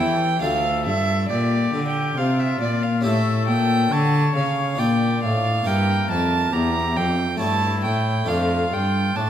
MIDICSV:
0, 0, Header, 1, 5, 480
1, 0, Start_track
1, 0, Key_signature, -1, "minor"
1, 0, Tempo, 873362
1, 237, Time_signature, 3, 2, 24, 8
1, 5110, End_track
2, 0, Start_track
2, 0, Title_t, "Violin"
2, 0, Program_c, 0, 40
2, 0, Note_on_c, 0, 79, 74
2, 226, Note_off_c, 0, 79, 0
2, 230, Note_on_c, 0, 77, 69
2, 468, Note_off_c, 0, 77, 0
2, 472, Note_on_c, 0, 76, 81
2, 705, Note_off_c, 0, 76, 0
2, 708, Note_on_c, 0, 74, 71
2, 1025, Note_off_c, 0, 74, 0
2, 1036, Note_on_c, 0, 79, 61
2, 1198, Note_on_c, 0, 77, 64
2, 1206, Note_off_c, 0, 79, 0
2, 1317, Note_on_c, 0, 76, 65
2, 1325, Note_off_c, 0, 77, 0
2, 1433, Note_off_c, 0, 76, 0
2, 1436, Note_on_c, 0, 74, 64
2, 1556, Note_on_c, 0, 77, 58
2, 1565, Note_off_c, 0, 74, 0
2, 1666, Note_off_c, 0, 77, 0
2, 1670, Note_on_c, 0, 76, 69
2, 1907, Note_off_c, 0, 76, 0
2, 1910, Note_on_c, 0, 79, 79
2, 2158, Note_on_c, 0, 81, 77
2, 2166, Note_off_c, 0, 79, 0
2, 2396, Note_off_c, 0, 81, 0
2, 2399, Note_on_c, 0, 77, 65
2, 2634, Note_on_c, 0, 79, 65
2, 2643, Note_off_c, 0, 77, 0
2, 2875, Note_off_c, 0, 79, 0
2, 2877, Note_on_c, 0, 77, 74
2, 3113, Note_on_c, 0, 79, 75
2, 3122, Note_off_c, 0, 77, 0
2, 3352, Note_off_c, 0, 79, 0
2, 3357, Note_on_c, 0, 81, 74
2, 3589, Note_on_c, 0, 82, 72
2, 3597, Note_off_c, 0, 81, 0
2, 3829, Note_on_c, 0, 79, 70
2, 3838, Note_off_c, 0, 82, 0
2, 4062, Note_off_c, 0, 79, 0
2, 4066, Note_on_c, 0, 81, 76
2, 4303, Note_off_c, 0, 81, 0
2, 4313, Note_on_c, 0, 79, 71
2, 4552, Note_on_c, 0, 77, 65
2, 4560, Note_off_c, 0, 79, 0
2, 4797, Note_on_c, 0, 79, 68
2, 4805, Note_off_c, 0, 77, 0
2, 5037, Note_on_c, 0, 81, 71
2, 5045, Note_off_c, 0, 79, 0
2, 5110, Note_off_c, 0, 81, 0
2, 5110, End_track
3, 0, Start_track
3, 0, Title_t, "Oboe"
3, 0, Program_c, 1, 68
3, 0, Note_on_c, 1, 64, 55
3, 79, Note_off_c, 1, 64, 0
3, 235, Note_on_c, 1, 69, 56
3, 694, Note_off_c, 1, 69, 0
3, 715, Note_on_c, 1, 67, 53
3, 1185, Note_off_c, 1, 67, 0
3, 1192, Note_on_c, 1, 65, 56
3, 1665, Note_off_c, 1, 65, 0
3, 1673, Note_on_c, 1, 69, 56
3, 2154, Note_on_c, 1, 73, 56
3, 2162, Note_off_c, 1, 69, 0
3, 2633, Note_on_c, 1, 74, 64
3, 2641, Note_off_c, 1, 73, 0
3, 3111, Note_off_c, 1, 74, 0
3, 3114, Note_on_c, 1, 70, 61
3, 3581, Note_off_c, 1, 70, 0
3, 3585, Note_on_c, 1, 67, 48
3, 3908, Note_off_c, 1, 67, 0
3, 4067, Note_on_c, 1, 64, 50
3, 4551, Note_on_c, 1, 65, 53
3, 4559, Note_off_c, 1, 64, 0
3, 5036, Note_on_c, 1, 62, 50
3, 5044, Note_off_c, 1, 65, 0
3, 5110, Note_off_c, 1, 62, 0
3, 5110, End_track
4, 0, Start_track
4, 0, Title_t, "Harpsichord"
4, 0, Program_c, 2, 6
4, 0, Note_on_c, 2, 61, 35
4, 0, Note_on_c, 2, 67, 35
4, 0, Note_on_c, 2, 69, 38
4, 3, Note_on_c, 2, 52, 41
4, 211, Note_off_c, 2, 61, 0
4, 216, Note_off_c, 2, 67, 0
4, 216, Note_on_c, 2, 62, 37
4, 217, Note_off_c, 2, 52, 0
4, 221, Note_off_c, 2, 69, 0
4, 223, Note_on_c, 2, 65, 36
4, 232, Note_on_c, 2, 69, 39
4, 240, Note_on_c, 2, 38, 43
4, 456, Note_off_c, 2, 38, 0
4, 475, Note_on_c, 2, 43, 39
4, 694, Note_off_c, 2, 43, 0
4, 714, Note_on_c, 2, 46, 40
4, 933, Note_off_c, 2, 46, 0
4, 955, Note_on_c, 2, 50, 42
4, 1173, Note_off_c, 2, 50, 0
4, 1196, Note_on_c, 2, 48, 41
4, 1414, Note_off_c, 2, 48, 0
4, 1433, Note_on_c, 2, 46, 42
4, 1644, Note_off_c, 2, 62, 0
4, 1647, Note_off_c, 2, 65, 0
4, 1652, Note_off_c, 2, 69, 0
4, 1652, Note_on_c, 2, 61, 36
4, 1653, Note_off_c, 2, 46, 0
4, 1661, Note_on_c, 2, 67, 42
4, 1670, Note_on_c, 2, 69, 40
4, 1677, Note_on_c, 2, 45, 45
4, 1894, Note_off_c, 2, 45, 0
4, 1913, Note_on_c, 2, 46, 40
4, 2131, Note_off_c, 2, 46, 0
4, 2155, Note_on_c, 2, 50, 41
4, 2372, Note_off_c, 2, 50, 0
4, 2394, Note_on_c, 2, 49, 44
4, 2600, Note_off_c, 2, 61, 0
4, 2605, Note_off_c, 2, 67, 0
4, 2609, Note_off_c, 2, 69, 0
4, 2612, Note_off_c, 2, 49, 0
4, 2612, Note_on_c, 2, 62, 36
4, 2620, Note_on_c, 2, 65, 39
4, 2626, Note_on_c, 2, 74, 35
4, 2638, Note_on_c, 2, 46, 37
4, 2855, Note_off_c, 2, 46, 0
4, 2877, Note_on_c, 2, 45, 41
4, 3088, Note_off_c, 2, 62, 0
4, 3092, Note_off_c, 2, 65, 0
4, 3092, Note_on_c, 2, 58, 38
4, 3093, Note_off_c, 2, 45, 0
4, 3096, Note_off_c, 2, 74, 0
4, 3101, Note_on_c, 2, 64, 36
4, 3109, Note_on_c, 2, 76, 38
4, 3119, Note_on_c, 2, 43, 44
4, 3333, Note_off_c, 2, 43, 0
4, 3334, Note_off_c, 2, 58, 0
4, 3354, Note_on_c, 2, 41, 35
4, 3569, Note_off_c, 2, 41, 0
4, 3592, Note_on_c, 2, 40, 36
4, 3809, Note_off_c, 2, 40, 0
4, 3829, Note_on_c, 2, 41, 41
4, 4042, Note_off_c, 2, 64, 0
4, 4045, Note_off_c, 2, 76, 0
4, 4047, Note_off_c, 2, 41, 0
4, 4047, Note_on_c, 2, 57, 32
4, 4054, Note_on_c, 2, 64, 36
4, 4064, Note_on_c, 2, 73, 36
4, 4072, Note_on_c, 2, 43, 38
4, 4289, Note_off_c, 2, 43, 0
4, 4310, Note_on_c, 2, 45, 38
4, 4524, Note_off_c, 2, 57, 0
4, 4528, Note_off_c, 2, 64, 0
4, 4529, Note_off_c, 2, 45, 0
4, 4531, Note_on_c, 2, 57, 38
4, 4533, Note_off_c, 2, 73, 0
4, 4538, Note_on_c, 2, 62, 36
4, 4546, Note_on_c, 2, 69, 37
4, 4555, Note_on_c, 2, 41, 39
4, 4773, Note_off_c, 2, 41, 0
4, 4775, Note_off_c, 2, 57, 0
4, 4792, Note_on_c, 2, 43, 38
4, 5013, Note_off_c, 2, 43, 0
4, 5033, Note_on_c, 2, 45, 36
4, 5110, Note_off_c, 2, 45, 0
4, 5110, Note_off_c, 2, 62, 0
4, 5110, Note_off_c, 2, 69, 0
4, 5110, End_track
5, 0, Start_track
5, 0, Title_t, "Cello"
5, 0, Program_c, 3, 42
5, 0, Note_on_c, 3, 52, 45
5, 232, Note_off_c, 3, 52, 0
5, 235, Note_on_c, 3, 38, 55
5, 478, Note_on_c, 3, 43, 56
5, 486, Note_off_c, 3, 38, 0
5, 714, Note_off_c, 3, 43, 0
5, 717, Note_on_c, 3, 46, 55
5, 951, Note_off_c, 3, 46, 0
5, 955, Note_on_c, 3, 50, 48
5, 1190, Note_off_c, 3, 50, 0
5, 1194, Note_on_c, 3, 48, 53
5, 1430, Note_off_c, 3, 48, 0
5, 1434, Note_on_c, 3, 46, 48
5, 1677, Note_on_c, 3, 45, 54
5, 1685, Note_off_c, 3, 46, 0
5, 1916, Note_on_c, 3, 46, 58
5, 1925, Note_off_c, 3, 45, 0
5, 2151, Note_off_c, 3, 46, 0
5, 2155, Note_on_c, 3, 50, 62
5, 2389, Note_off_c, 3, 50, 0
5, 2392, Note_on_c, 3, 49, 48
5, 2634, Note_on_c, 3, 46, 54
5, 2642, Note_off_c, 3, 49, 0
5, 2877, Note_on_c, 3, 45, 47
5, 2886, Note_off_c, 3, 46, 0
5, 3107, Note_off_c, 3, 45, 0
5, 3111, Note_on_c, 3, 43, 56
5, 3346, Note_off_c, 3, 43, 0
5, 3351, Note_on_c, 3, 41, 51
5, 3585, Note_off_c, 3, 41, 0
5, 3588, Note_on_c, 3, 40, 54
5, 3829, Note_on_c, 3, 41, 48
5, 3837, Note_off_c, 3, 40, 0
5, 4065, Note_off_c, 3, 41, 0
5, 4069, Note_on_c, 3, 43, 50
5, 4309, Note_on_c, 3, 45, 49
5, 4317, Note_off_c, 3, 43, 0
5, 4548, Note_off_c, 3, 45, 0
5, 4551, Note_on_c, 3, 41, 53
5, 4788, Note_off_c, 3, 41, 0
5, 4794, Note_on_c, 3, 43, 49
5, 5031, Note_off_c, 3, 43, 0
5, 5036, Note_on_c, 3, 45, 48
5, 5110, Note_off_c, 3, 45, 0
5, 5110, End_track
0, 0, End_of_file